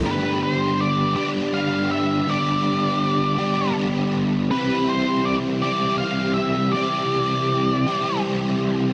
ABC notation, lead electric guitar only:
X:1
M:6/8
L:1/8
Q:3/8=54
K:G
V:1 name="Lead electric guitar"
B c d d =f e | d4 z2 | B c d d =f e | d4 z2 |]